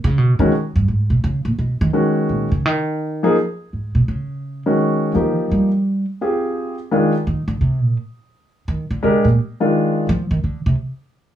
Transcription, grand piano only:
0.39 D#3 G#3 C#4 F#4
1.93 D#3 G#3 C#4 F#4
3.23 F3 A#3 D#4 G#4
4.66 D#3 G#3 C#4 F#4
5.14 F3 A#3 D#4 G4
6.21 C4 F4 G4 G#4
6.91 D#3 G#3 D4 F4
9.03 G#3 D4 G4 A#4
9.60 D#3 G#3 D4 F4

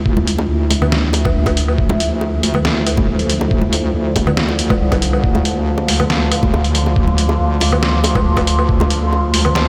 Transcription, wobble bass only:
Already playing: D2
0.49 D2
1.78 D2
3.08 D2
3.94 D2
4.80 C2
5.24 D2
6.53 D2
7.39 D2
8.69 D2

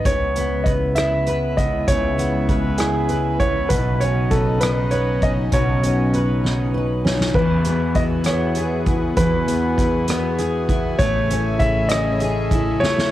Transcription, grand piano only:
0.06 C#5
0.64 D#5
0.95 E5
1.57 D#5
1.88 C#5
2.78 G#4
3.40 C#5
3.69 B4
4.00 C#5
4.31 A4
4.60 B4
4.91 C#5
5.23 D#5
5.53 C#5
7.35 B4
7.96 D#5
8.26 C#5
9.17 B4
10.99 C#5
11.59 E5
11.89 D#5
12.80 C#5

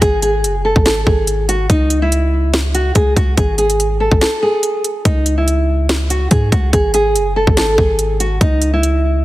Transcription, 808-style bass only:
0.02 G#1
0.44 F#1
0.76 G#1
1.07 G#1
1.70 C#2
2.95 C#2
3.16 C#2
3.37 G#1
4.12 G#1
5.05 C#2
6.31 G#2
6.52 C#2
6.73 G#1
7.15 F#1
7.47 G#1
7.78 G#1
8.41 C#2

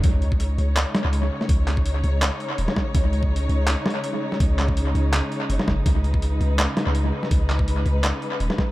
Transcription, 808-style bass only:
0.04 C#2
0.58 C#2
1.05 C#2
1.49 C#2
2.04 C#2
2.59 D#1
2.95 C#2
3.49 C#2
4.40 C#2
4.95 C#2
5.50 F#1
5.68 F#1
5.86 C#2
6.41 C#2
6.87 C#2
7.31 C#2
7.86 C#2
8.40 D#1

